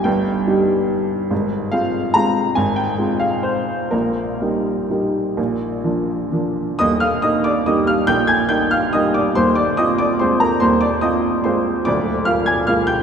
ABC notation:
X:1
M:3/4
L:1/8
Q:1/4=141
K:Eb
V:1 name="Upright piano"
g3 z3 | z2 f2 b2 | a g2 f c2 | B6- |
B4 z2 | [ee'] [ff'] [ee'] [dd'] [ee'] [ff'] | [gg'] [aa'] [gg'] [ff'] [ee'] [dd'] | [cc'] [dd'] [ee'] [dd'] [cc'] [Bb] |
[cc'] [dd'] [ee']2 [cc']2 | [dd']2 [ff'] [aa'] [ff'] [gg'] |]
V:2 name="Upright piano"
[G,,,G,,]2 [G,EG]4 | [A,,,A,,]2 [A,CF]2 [A,CF]2 | [A,,,A,,]2 [A,CF]4 | [B,,,B,,]2 [G,B,E]2 [G,B,E]2 |
[B,,,B,,]2 [F,B,D]2 [F,B,D]2 | [E,,,E,,]2 [B,E]2 [G,B,E]2 | [B,,,B,,]2 [B,E]2 [G,B,E]2 | [E,,,E,,]2 [CF]2 [A,CF]2 |
[E,,,E,,]2 [CF]2 [A,CF]2 | [D,,,D,,]2 [B,F]2 [A,B,F]2 |]